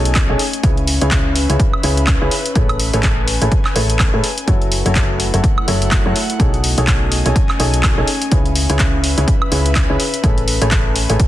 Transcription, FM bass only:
0, 0, Header, 1, 2, 480
1, 0, Start_track
1, 0, Tempo, 480000
1, 637, Time_signature, 4, 2, 24, 8
1, 11278, End_track
2, 0, Start_track
2, 0, Title_t, "FM bass"
2, 0, Program_c, 0, 39
2, 0, Note_on_c, 0, 35, 95
2, 269, Note_off_c, 0, 35, 0
2, 296, Note_on_c, 0, 35, 97
2, 365, Note_off_c, 0, 35, 0
2, 636, Note_on_c, 0, 37, 100
2, 988, Note_off_c, 0, 37, 0
2, 1016, Note_on_c, 0, 37, 95
2, 1469, Note_off_c, 0, 37, 0
2, 1495, Note_on_c, 0, 37, 93
2, 1570, Note_off_c, 0, 37, 0
2, 1836, Note_on_c, 0, 37, 94
2, 2188, Note_off_c, 0, 37, 0
2, 2217, Note_on_c, 0, 37, 97
2, 2291, Note_off_c, 0, 37, 0
2, 2556, Note_on_c, 0, 33, 96
2, 2908, Note_off_c, 0, 33, 0
2, 2937, Note_on_c, 0, 33, 92
2, 3389, Note_off_c, 0, 33, 0
2, 3416, Note_on_c, 0, 33, 96
2, 3491, Note_off_c, 0, 33, 0
2, 3757, Note_on_c, 0, 33, 96
2, 4109, Note_off_c, 0, 33, 0
2, 4137, Note_on_c, 0, 45, 97
2, 4211, Note_off_c, 0, 45, 0
2, 4476, Note_on_c, 0, 30, 95
2, 4829, Note_off_c, 0, 30, 0
2, 4856, Note_on_c, 0, 30, 97
2, 5308, Note_off_c, 0, 30, 0
2, 5338, Note_on_c, 0, 30, 91
2, 5412, Note_off_c, 0, 30, 0
2, 5678, Note_on_c, 0, 30, 97
2, 6029, Note_off_c, 0, 30, 0
2, 6058, Note_on_c, 0, 42, 95
2, 6132, Note_off_c, 0, 42, 0
2, 6397, Note_on_c, 0, 35, 99
2, 6749, Note_off_c, 0, 35, 0
2, 6777, Note_on_c, 0, 35, 93
2, 7229, Note_off_c, 0, 35, 0
2, 7258, Note_on_c, 0, 35, 95
2, 7332, Note_off_c, 0, 35, 0
2, 7597, Note_on_c, 0, 35, 94
2, 7949, Note_off_c, 0, 35, 0
2, 7978, Note_on_c, 0, 35, 97
2, 8045, Note_off_c, 0, 35, 0
2, 8317, Note_on_c, 0, 37, 96
2, 8669, Note_off_c, 0, 37, 0
2, 8697, Note_on_c, 0, 37, 94
2, 9149, Note_off_c, 0, 37, 0
2, 9177, Note_on_c, 0, 37, 95
2, 9251, Note_off_c, 0, 37, 0
2, 9516, Note_on_c, 0, 37, 96
2, 9869, Note_off_c, 0, 37, 0
2, 9897, Note_on_c, 0, 37, 98
2, 9971, Note_off_c, 0, 37, 0
2, 10236, Note_on_c, 0, 33, 96
2, 10588, Note_off_c, 0, 33, 0
2, 10616, Note_on_c, 0, 33, 95
2, 11068, Note_off_c, 0, 33, 0
2, 11097, Note_on_c, 0, 33, 93
2, 11171, Note_off_c, 0, 33, 0
2, 11278, End_track
0, 0, End_of_file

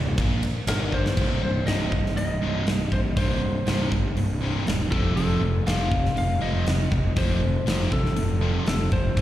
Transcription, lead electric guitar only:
0, 0, Header, 1, 2, 480
1, 0, Start_track
1, 0, Tempo, 499168
1, 1131, Time_signature, 4, 2, 24, 8
1, 8860, End_track
2, 0, Start_track
2, 0, Title_t, "Lead electric guitar"
2, 0, Program_c, 0, 29
2, 664, Note_on_c, 0, 70, 78
2, 904, Note_off_c, 0, 70, 0
2, 904, Note_on_c, 0, 72, 98
2, 1367, Note_off_c, 0, 72, 0
2, 1378, Note_on_c, 0, 72, 82
2, 1599, Note_off_c, 0, 72, 0
2, 1603, Note_on_c, 0, 75, 92
2, 2075, Note_off_c, 0, 75, 0
2, 2086, Note_on_c, 0, 75, 98
2, 2814, Note_off_c, 0, 75, 0
2, 2818, Note_on_c, 0, 72, 82
2, 2881, Note_off_c, 0, 72, 0
2, 3051, Note_on_c, 0, 72, 79
2, 3731, Note_off_c, 0, 72, 0
2, 4728, Note_on_c, 0, 69, 79
2, 4954, Note_off_c, 0, 69, 0
2, 4966, Note_on_c, 0, 69, 83
2, 5414, Note_off_c, 0, 69, 0
2, 5451, Note_on_c, 0, 77, 89
2, 5931, Note_off_c, 0, 77, 0
2, 5943, Note_on_c, 0, 77, 97
2, 6166, Note_off_c, 0, 77, 0
2, 6170, Note_on_c, 0, 75, 91
2, 6904, Note_on_c, 0, 72, 89
2, 6913, Note_off_c, 0, 75, 0
2, 7581, Note_off_c, 0, 72, 0
2, 7627, Note_on_c, 0, 69, 81
2, 8304, Note_off_c, 0, 69, 0
2, 8347, Note_on_c, 0, 69, 77
2, 8581, Note_off_c, 0, 69, 0
2, 8585, Note_on_c, 0, 72, 80
2, 8860, Note_off_c, 0, 72, 0
2, 8860, End_track
0, 0, End_of_file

